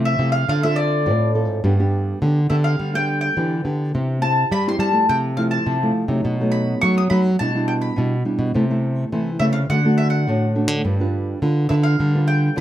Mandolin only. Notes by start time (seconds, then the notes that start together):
0.05 E5
0.32 F5
0.49 F5
0.63 E5
0.76 D5
2.50 E5
2.64 F5
2.95 G5
3.21 G5
4.22 A5
4.52 B5
4.69 C6
4.80 A5
5.09 G5
5.37 F5
5.51 A5
6.52 B5
6.81 C#6
6.98 D#6
7.10 B5
7.39 A5
7.68 G5
7.82 B5
9.39 E5
9.53 F5
9.70 F#5
9.98 E5
10.10 F#5
11.69 E5
11.83 F5
12.28 G5